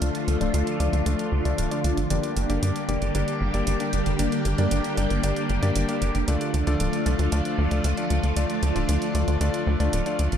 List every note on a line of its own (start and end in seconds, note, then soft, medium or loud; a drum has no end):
0.00 0.11 D2 loud
0.00 10.38 D3 medium
0.00 2.06 F3 medium
0.00 2.06 A3 medium
0.00 0.38 A3 medium
0.00 0.38 D4 medium
0.00 2.06 F4 medium
0.00 0.38 F4 medium
0.00 0.38 D5 medium
0.00 closed hi-hat medium
0.15 closed hi-hat soft
0.28 0.37 D2 medium
0.28 closed hi-hat medium
0.41 0.50 D1 medium
0.41 0.77 A3 medium
0.41 0.77 D4 medium
0.41 0.77 F4 medium
0.41 0.77 D5 loud
0.41 closed hi-hat soft
0.54 0.63 D2 loud
0.54 closed hi-hat medium
0.67 closed hi-hat soft
0.80 0.89 D2 medium
0.80 1.03 A3 medium
0.80 1.03 D4 medium
0.80 1.03 F4 medium
0.80 1.03 D5 medium
0.80 closed hi-hat medium
0.93 1.02 D2 medium
0.93 closed hi-hat soft
1.06 1.15 D2 loud
1.06 1.42 A3 medium
1.06 1.42 D4 medium
1.06 1.42 F4 medium
1.06 1.42 D5 loud
1.06 closed hi-hat medium
1.19 closed hi-hat soft
1.32 1.42 D2 medium
1.45 1.55 D2 medium
1.45 1.68 A3 medium
1.45 1.68 D4 medium
1.45 1.68 F4 medium
1.45 1.68 D5 medium
1.45 closed hi-hat soft
1.58 1.68 D1 loud
1.58 closed hi-hat medium
1.71 1.99 A3 medium
1.71 1.99 D4 medium
1.71 1.99 F4 medium
1.71 1.99 D5 medium
1.71 closed hi-hat soft
1.84 1.94 D2 medium
1.84 closed hi-hat medium
1.97 2.07 A1 medium
1.97 closed hi-hat soft
2.10 2.20 G1 medium
2.10 6.24 G3 medium
2.10 6.24 A#3 medium
2.10 2.46 A#3 medium
2.10 2.46 D4 medium
2.10 6.24 G4 medium
2.10 2.46 G4 medium
2.10 2.46 D5 medium
2.10 closed hi-hat medium
2.23 closed hi-hat soft
2.36 2.46 G1 medium
2.36 closed hi-hat medium
2.49 2.59 G1 medium
2.49 2.86 A#3 medium
2.49 2.86 D4 medium
2.49 2.86 G4 medium
2.49 2.86 D5 loud
2.49 closed hi-hat soft
2.63 2.72 G2 medium
2.63 closed hi-hat medium
2.76 closed hi-hat soft
2.89 2.98 F1 medium
2.89 3.12 A#3 medium
2.89 3.12 D4 medium
2.89 3.12 G4 medium
2.89 3.12 D5 medium
2.89 closed hi-hat medium
3.02 3.11 G1 medium
3.02 closed hi-hat soft
3.15 3.24 G1 loud
3.15 3.51 A#3 medium
3.15 3.51 D4 medium
3.15 3.51 G4 medium
3.15 3.51 D5 medium
3.15 closed hi-hat medium
3.28 closed hi-hat soft
3.41 3.50 G1 medium
3.54 3.63 G1 medium
3.54 3.77 A#3 medium
3.54 3.77 D4 medium
3.54 3.77 G4 medium
3.54 3.77 D5 medium
3.54 closed hi-hat soft
3.67 3.76 G1 loud
3.67 closed hi-hat medium
3.80 4.08 A#3 medium
3.80 4.08 D4 medium
3.80 4.08 G4 medium
3.80 4.08 D5 medium
3.80 closed hi-hat soft
3.93 4.02 G1 medium
3.93 closed hi-hat medium
4.06 4.16 G1 medium
4.06 closed hi-hat soft
4.19 4.29 G1 medium
4.19 4.55 A#3 medium
4.19 4.55 D4 medium
4.19 4.55 G4 medium
4.19 4.55 D5 medium
4.19 closed hi-hat medium
4.32 closed hi-hat soft
4.45 4.55 G1 medium
4.45 closed hi-hat medium
4.58 4.68 G2 medium
4.58 4.94 A#3 medium
4.58 4.94 D4 medium
4.58 4.94 G4 medium
4.58 4.94 D5 loud
4.58 closed hi-hat soft
4.71 4.81 G1 medium
4.71 closed hi-hat medium
4.84 closed hi-hat soft
4.97 5.07 G1 medium
4.97 5.20 A#3 medium
4.97 5.20 D4 medium
4.97 5.20 G4 medium
4.97 5.20 D5 medium
4.97 closed hi-hat medium
5.10 5.20 G1 medium
5.10 closed hi-hat soft
5.23 5.33 G1 loud
5.23 5.59 A#3 medium
5.23 5.59 D4 medium
5.23 5.59 G4 medium
5.23 5.59 D5 loud
5.23 closed hi-hat medium
5.36 closed hi-hat soft
5.50 5.59 G1 medium
5.50 closed hi-hat soft
5.63 5.72 G2 medium
5.63 5.86 A#3 medium
5.63 5.86 D4 medium
5.63 5.86 G4 medium
5.63 5.85 D5 medium
5.63 closed hi-hat soft
5.76 5.85 G1 loud
5.76 closed hi-hat medium
5.89 6.16 A#3 medium
5.89 6.16 D4 medium
5.89 6.16 G4 medium
5.89 6.16 D5 medium
5.89 closed hi-hat soft
6.02 6.11 G1 medium
6.02 closed hi-hat medium
6.15 6.24 G1 medium
6.15 closed hi-hat soft
6.28 6.37 D2 medium
6.28 10.38 F3 medium
6.28 6.64 A3 medium
6.28 10.38 A3 medium
6.28 6.64 D4 medium
6.28 6.64 F4 medium
6.28 10.38 F4 medium
6.28 6.64 D5 medium
6.28 closed hi-hat medium
6.41 closed hi-hat soft
6.54 6.63 D2 loud
6.54 closed hi-hat medium
6.67 6.76 D2 medium
6.67 7.03 A3 medium
6.67 7.03 D4 medium
6.67 7.03 F4 medium
6.67 7.03 D5 loud
6.67 closed hi-hat soft
6.80 6.89 D1 loud
6.80 closed hi-hat medium
6.93 closed hi-hat soft
7.06 7.15 C2 medium
7.06 7.29 A3 medium
7.06 7.29 D4 medium
7.06 7.29 F4 medium
7.06 7.29 D5 medium
7.06 closed hi-hat medium
7.19 7.28 D2 medium
7.19 closed hi-hat soft
7.32 7.42 D2 loud
7.32 7.68 A3 medium
7.32 7.68 D4 medium
7.32 7.68 F4 medium
7.32 7.68 D5 loud
7.32 closed hi-hat medium
7.45 closed hi-hat soft
7.58 7.68 D2 medium
7.71 7.81 D2 medium
7.71 7.94 A3 medium
7.71 7.94 D4 medium
7.71 7.94 F4 medium
7.71 7.94 D5 medium
7.71 closed hi-hat soft
7.84 7.94 D2 loud
7.84 closed hi-hat medium
7.97 8.25 A3 medium
7.97 8.25 D4 medium
7.97 8.25 F4 medium
7.97 8.25 D5 medium
7.97 closed hi-hat soft
8.10 8.20 D2 medium
8.10 closed hi-hat medium
8.23 8.33 D2 medium
8.23 closed hi-hat soft
8.36 8.46 D2 medium
8.36 8.73 A3 medium
8.36 8.73 D4 medium
8.36 8.73 F4 medium
8.36 8.73 D5 medium
8.36 closed hi-hat medium
8.50 closed hi-hat soft
8.63 8.72 D2 medium
8.63 closed hi-hat medium
8.76 8.85 D1 medium
8.76 9.12 A3 medium
8.76 9.12 D4 medium
8.76 9.12 F4 medium
8.76 9.12 D5 loud
8.76 closed hi-hat soft
8.89 8.98 D2 loud
8.89 closed hi-hat medium
9.02 closed hi-hat soft
9.15 9.24 D2 medium
9.15 9.38 A3 medium
9.15 9.38 D4 medium
9.15 9.38 F4 medium
9.15 9.38 D5 medium
9.15 closed hi-hat medium
9.28 9.37 D2 medium
9.28 closed hi-hat soft
9.41 9.50 D2 loud
9.41 9.77 A3 medium
9.41 9.77 D4 medium
9.41 9.77 F4 medium
9.41 9.77 D5 loud
9.41 closed hi-hat medium
9.54 closed hi-hat soft
9.67 9.76 D2 medium
9.80 9.89 D2 medium
9.80 10.03 A3 medium
9.80 10.03 D4 medium
9.80 10.03 F4 medium
9.80 10.03 D5 medium
9.80 closed hi-hat soft
9.93 10.02 D1 loud
9.93 closed hi-hat medium
10.06 10.34 A3 medium
10.06 10.34 D4 medium
10.06 10.34 F4 medium
10.06 10.34 D5 medium
10.06 closed hi-hat soft
10.19 10.29 D2 medium
10.19 closed hi-hat medium
10.32 10.38 A1 medium
10.32 closed hi-hat soft